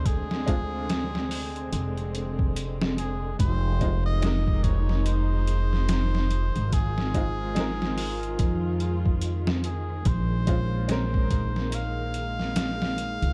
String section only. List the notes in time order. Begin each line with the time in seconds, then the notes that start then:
Already playing: C3 D3 G#3
0.08 C4
3.39 D#3 F3 D#4
6.73 F4
10.06 G#3 A#3